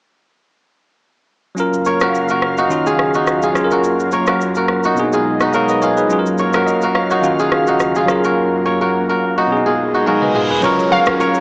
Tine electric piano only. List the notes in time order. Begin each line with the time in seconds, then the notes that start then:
1.55 F#3 C#4 F4
1.60 A#4
2.69 D#3 C#4 F4 F#4
3.53 F#3 C#4 F4
3.58 G#4
3.64 A#4
4.94 B2 B3 D4
4.99 G#4
5.04 D#4
5.53 C#5 F5
5.69 B4 D#5
5.82 A#4 C#5
5.97 G#4 B4
6.07 F#3 C#4 F4
6.12 G#4
6.19 A#4
6.66 D#5
6.95 C#5 F5
7.10 A#4 C#5
7.22 D#3 C#4 F4 F#4
8.06 F#3 C#4 F4
8.11 A#4
9.47 B2 B3 C#4
9.52 G#4
9.57 D#4
10.06 F5 G#5
10.22 B4 D#5
10.50 G#4 B4
10.60 F#3 C#4 F4
10.66 A#4